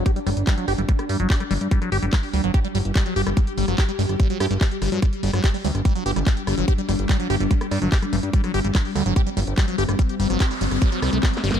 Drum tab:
HH |x--x--o--x--x--x--o--x--x--x--o--x--o--x--o--x--|x--x--o--x--x--o--o--x--x--x--o--x--x--x--o--x--|x--x--o--x--x--x--o--x--x--x--o--x--o--x--o--x--|x--x--o--x--x--o--o--x--x--x--o--x--x--x--o--x--|
CP |------------x-----------------------x-----------|------------x-----------------------x-----------|------------x-----------------------x-----------|------------x-----------------------x-----------|
SD |------r-----------r--------r-----------r--------|---r--------r-----------r-----------r--------r--|---------r-----------r--------r-----------r-----|r--------r-----------r-----------r--------r-----|
BD |o-----------o-----------o-----------o-----------|o-----------o-----------o-----------o-----------|o-----------o-----------o-----------o-----------|o-----------o-----------o-----------o-----------|

HH |x--x--o--x--x--x--o--x--x--x--o--x--o--x--o--x--|x--x--o--x--x--o--o--x--x--x--o--x--x--x--o--x--|x--x--o--x--x--o--o--x--x--x--o--x--o--x--o--x--|
CP |------------x-----------------------x-----------|------------x-----------------------x-----------|------------x-----------------------x-----------|
SD |------r-----------r--------r-----------r--------|---r--------r-----------r-----------r--------r--|---------r-----------r--------r-----o---o---o---|
BD |o-----------o-----------o-----------o-----------|o-----------o-----------o-----------o-----------|o-----------o-----------o-----------o-----------|